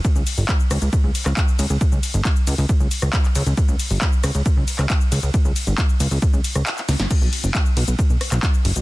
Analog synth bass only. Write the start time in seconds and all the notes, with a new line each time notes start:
0.16 C#2
0.38 G1
0.71 C#2
0.82 C#2
1.04 C#2
1.26 C#2
1.59 C#2
1.70 C#2
1.92 C#2
2.14 G1
2.47 C#2
2.58 C#2
2.80 C#2
3.02 C#2
3.35 C#2
3.46 C#2
3.68 C#2
3.91 G1
4.24 C#2
4.35 C#2
4.57 C#2
4.79 C#2
5.12 C#2
5.23 C#2
5.45 C#2
5.67 G1
6.00 C#2
6.11 C#2
6.33 C#2
6.55 C#2
6.88 C#2
6.99 G1
7.22 B1
7.44 F#1
7.77 B1
7.88 B1
8.10 B1
8.32 B1
8.65 F#1
8.76 B1